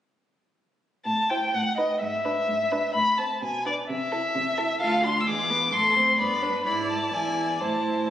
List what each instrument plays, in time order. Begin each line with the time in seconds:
1.06 cello A2, violin A5
1.30 viola E4, violin C5 G5
1.54 cello A2, violin F#5
1.77 viola D#4, violin B4 D#5
2.01 cello G#2, violin E5
2.25 viola D4, violin B4
2.47 cello G#2
2.71 viola D4, violin B4
2.95 cello A2, violin B5
3.18 viola C4, violin C5 A5
3.42 cello B2, violin G#5
3.66 viola D4, violin B4 D5
3.90 cello C3, violin E5
4.12 viola E4, violin A4
4.35 cello C3
4.58 viola E4, violin A4
4.80 cello D2, viola F4, violin A4 F5
5.03 viola D4, violin F4 C6
5.20 violin E6
5.26 cello E2, viola G#3, violin G#4 D6
5.50 viola B3, violin B4
5.73 cello A2, viola A3, violin A4 C6
5.96 viola C4, violin C5
6.19 cello G2, viola B3, violin D5 B5
6.42 viola D4, violin B4
6.65 cello G#2, viola E4, violin D5 B5
6.90 violin A5
7.12 cello E2, viola E4, violin D5 G#5
7.60 cello A2, viola E4, violin C5 A5